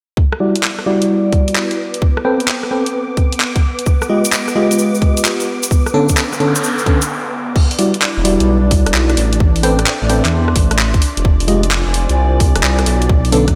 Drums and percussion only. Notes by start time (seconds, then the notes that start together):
0.17 kick
0.32 cross-stick
0.56 closed hi-hat
0.63 clap
0.79 cross-stick
1.02 closed hi-hat
1.32 kick, closed hi-hat
1.48 closed hi-hat
1.56 clap
1.71 closed hi-hat
1.94 closed hi-hat
2.02 kick
2.17 cross-stick
2.40 closed hi-hat
2.48 clap
2.63 cross-stick
2.86 closed hi-hat
3.17 kick, closed hi-hat
3.33 closed hi-hat
3.40 clap
3.56 kick, closed hi-hat
3.79 closed hi-hat
3.86 kick, shaker
4.02 cross-stick, shaker
4.25 closed hi-hat, shaker
4.32 clap, shaker
4.48 cross-stick, shaker
4.71 closed hi-hat, shaker
4.79 shaker
4.95 shaker
5.02 kick, closed hi-hat
5.17 closed hi-hat, shaker
5.25 clap, shaker
5.40 closed hi-hat, shaker
5.63 closed hi-hat, shaker
5.71 kick, shaker
5.86 cross-stick, shaker
6.09 kick, closed hi-hat, shaker
6.17 clap, shaker
6.33 cross-stick, shaker
6.40 closed hi-hat
6.55 closed hi-hat, shaker
6.64 shaker
6.78 shaker
6.86 kick, closed hi-hat
7.02 closed hi-hat, shaker
7.56 kick, crash
7.71 open hi-hat
7.79 open hi-hat
7.94 closed hi-hat
8.02 clap
8.25 open hi-hat
8.40 closed hi-hat
8.71 kick, open hi-hat
8.86 cross-stick, closed hi-hat
8.94 clap
9.10 cross-stick, closed hi-hat
9.17 open hi-hat
9.33 closed hi-hat
9.40 kick
9.56 open hi-hat
9.63 open hi-hat
9.79 cross-stick, closed hi-hat
9.86 clap
10.10 open hi-hat
10.25 clap, closed hi-hat
10.48 cross-stick
10.56 kick, open hi-hat
10.71 cross-stick, closed hi-hat
10.79 clap
10.94 kick, closed hi-hat
11.02 open hi-hat
11.17 closed hi-hat
11.25 kick
11.40 open hi-hat
11.48 open hi-hat
11.63 closed hi-hat
11.71 clap
11.94 open hi-hat
12.09 closed hi-hat
12.40 kick, open hi-hat
12.56 cross-stick, closed hi-hat
12.63 clap
12.79 cross-stick, closed hi-hat
12.86 open hi-hat
13.02 closed hi-hat
13.09 kick
13.25 open hi-hat
13.32 open hi-hat
13.48 kick, cross-stick, closed hi-hat